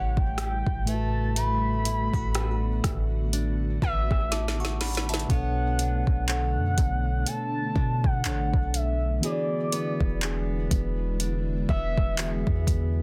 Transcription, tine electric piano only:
Already playing: A2 A3 G4 B4 E5
0.84 A2 A3 E4 B4
0.90 F#4 E5
4.32 A5 D6
4.60 F#5 C#6
4.81 F#5 B5
5.09 E5 A5
5.27 B2 B3 D4
5.31 A4 C#5
9.21 E3 B3 F#4 G#4
9.26 C#5
9.32 D5
12.17 E3 B3 F#4 G#4 E5

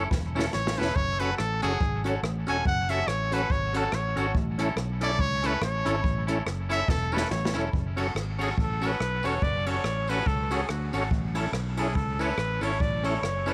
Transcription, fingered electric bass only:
0.11 E1
0.55 A1
0.79 E1
0.96 F#1
1.40 A1
1.64 F#1
1.81 G#1
2.23 A1
2.48 E1
2.66 F#1
3.07 A1
3.50 G#1
3.92 A1
4.17 G#1
4.34 A1
4.76 B1
5.19 C#2
5.61 A1
5.86 G#1
6.04 A1
6.46 F#1
6.88 E1
7.31 A1
7.54 E1
7.73 F#1
8.15 G#1
8.57 A1
9.00 B1
9.24 E1
9.42 F#1
9.84 A1
10.26 C#2
10.69 D2
10.94 G#1
11.11 A1
11.52 B1
11.96 C#2
12.37 A1
12.61 G#1
12.81 A1
13.22 F#1

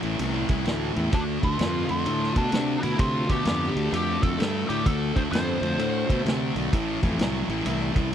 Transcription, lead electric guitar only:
1.14 D4
1.44 F4
1.91 F4
2.38 D4
2.83 E4
3.00 F4
3.30 G4
3.93 G4
4.23 A4
4.69 G4
4.87 A4
5.16 C5
5.32 C5

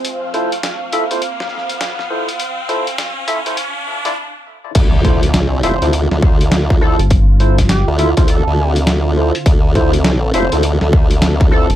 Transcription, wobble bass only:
4.75 D2
5.36 C#2
5.64 F1
5.82 D2
6.11 D2
7.88 D2
8.17 D2
8.47 D2
9.46 D2
10.34 F1
10.53 D2
10.82 D2

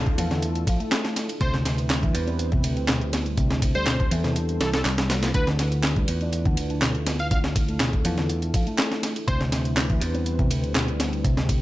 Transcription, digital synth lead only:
1.41 C5
3.75 C5
4.61 A4
4.74 A4
5.35 B4
7.20 F5
7.32 F5
9.28 C5

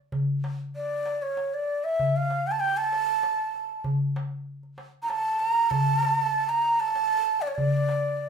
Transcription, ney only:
0.76 D5
1.22 C#5
1.54 D5
1.84 E5
2.17 F5
2.47 G5
2.51 A5
2.60 G5
2.77 A5
5.03 A#5
5.09 A5
5.40 A#5
5.70 A5
6.49 A#5
6.80 A5
7.42 D5
7.47 C#5
7.55 D5

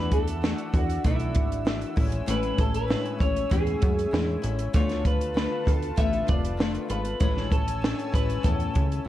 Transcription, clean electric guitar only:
Already playing: B4
0.13 A4
0.74 F#4
1.05 E4
2.31 B4
2.60 A4
2.75 B4
3.21 C#5
3.52 G#4
4.76 C#5
5.07 B4
5.37 B4
5.68 A4
5.98 E5
6.29 D5
6.91 B4
7.21 B4
7.53 A4
8.15 B4
8.45 A4

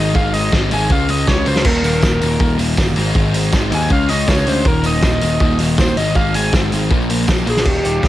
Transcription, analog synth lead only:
Already playing: D#5
0.15 F5
0.34 D#5
0.73 G#5
0.92 F5
1.10 D#5
1.28 C#5
1.48 C5
1.66 A#4
1.85 A#4
3.74 G#5
3.92 F5
4.09 D#5
4.28 C#5
4.48 C5
4.67 A#4
4.86 D#5
5.79 C5
5.97 D#5
6.16 F5
6.35 G#5
7.49 G#4
7.67 G4

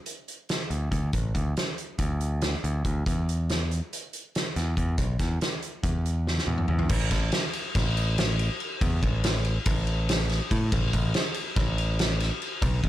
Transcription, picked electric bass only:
0.70 D2
0.91 D2
1.13 A1
1.35 D2
1.99 D2
2.64 D2
2.85 D2
3.06 E2
4.56 E2
4.77 E2
4.98 B1
5.20 E2
5.83 E2
6.47 E2
6.69 E2
6.90 A1
7.11 A1
7.75 A1
8.81 E2
9.02 A1
9.66 A1
10.51 A2
10.72 A1
10.94 A1
11.56 A1
12.62 B1
12.84 A1

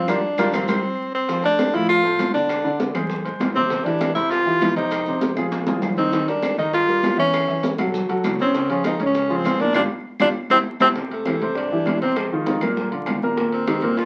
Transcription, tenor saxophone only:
Already playing: C4
0.09 D4
0.54 C4
1.15 C4
1.45 D4
1.75 E4
1.89 F4
2.34 D4
3.55 C4
3.84 D4
4.15 E4
4.30 F4
4.77 D#4
5.98 C4
6.28 D4
6.59 D#4
6.74 F4
7.19 C#4
8.41 C4
8.71 C#4
8.86 D#4
9.06 C#4
9.36 C4
9.61 D4
9.75 D4
10.21 D4
10.51 C4
10.81 C4
11.13 A3
11.56 D4
12.02 C4
12.17 G#3
13.53 C4
13.98 F4

